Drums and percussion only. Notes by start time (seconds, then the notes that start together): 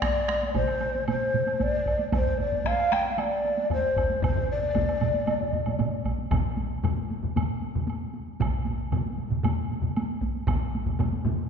0.02 taiko rim, taiko, taiko high, high woodblock
0.28 taiko rim, taiko high
0.42 taiko high
0.54 taiko, taiko mid, taiko high, high woodblock
0.68 high woodblock
0.81 taiko high, high woodblock
0.95 taiko high
1.08 taiko mid, taiko high, high woodblock
1.34 taiko mid, taiko high
1.47 taiko high, high woodblock
1.60 taiko, taiko high, high woodblock
1.86 taiko, high woodblock
1.99 taiko high
2.12 taiko, taiko low-mid, taiko high, high woodblock
2.26 taiko low-mid
2.39 taiko low-mid, taiko high
2.53 taiko low-mid, taiko high
2.64 taiko rim, taiko, taiko high, high woodblock
2.79 high woodblock
2.92 taiko rim, taiko high, high woodblock
3.05 taiko high
3.18 taiko high, high woodblock
3.44 taiko high
3.57 taiko high
3.70 taiko low-mid, taiko high, high woodblock
3.96 taiko, taiko low-mid, high woodblock
4.10 taiko high
4.22 taiko, taiko low-mid, taiko mid, taiko high, high woodblock
4.36 taiko low-mid, taiko mid
4.63 taiko high
4.74 taiko, taiko low-mid, taiko mid, taiko high, high woodblock
4.89 high woodblock
5.01 taiko low-mid, taiko mid, taiko high, high woodblock
5.14 taiko high
5.27 taiko low-mid, taiko mid, taiko high, high woodblock
5.40 taiko low-mid, taiko mid
5.53 taiko low-mid, taiko mid, taiko high
5.66 taiko low-mid, taiko mid, taiko high, high woodblock
5.79 taiko low-mid, taiko mid, taiko high, high woodblock
6.05 taiko, taiko high, high woodblock
6.18 taiko high
6.31 taiko, taiko low-mid, taiko mid, taiko high, high woodblock
6.45 taiko high
6.57 taiko high
6.71 taiko high
6.84 taiko low-mid, taiko mid, taiko high, high woodblock
6.98 taiko high
7.10 taiko high
7.23 taiko low-mid, taiko mid, taiko high
7.36 taiko low-mid, taiko mid, taiko high, high woodblock
7.49 taiko high
7.62 taiko high
7.75 taiko low-mid, taiko mid, taiko high
7.88 taiko high, high woodblock
8.01 taiko high
8.14 taiko high
8.27 taiko high
8.40 taiko, taiko low-mid, taiko mid, taiko high, high woodblock
8.53 taiko high
8.66 taiko high
8.80 taiko high
8.92 taiko low-mid, taiko mid, taiko high, high woodblock
9.06 taiko high
9.18 taiko high
9.30 taiko low-mid, taiko mid, taiko high
9.43 taiko low-mid, taiko mid, taiko high, high woodblock
9.59 taiko high
9.71 taiko high
9.82 taiko low-mid, taiko mid, taiko high
9.96 taiko high, high woodblock
10.10 taiko high
10.21 taiko, taiko high
10.36 taiko high
10.47 taiko, taiko low-mid, taiko mid, taiko high, high woodblock
10.61 taiko high
10.75 taiko high
10.86 taiko low-mid, taiko mid, taiko high
10.99 taiko low-mid, taiko mid, taiko high, high woodblock
11.13 taiko high
11.25 taiko low-mid, taiko mid, taiko high
11.38 taiko high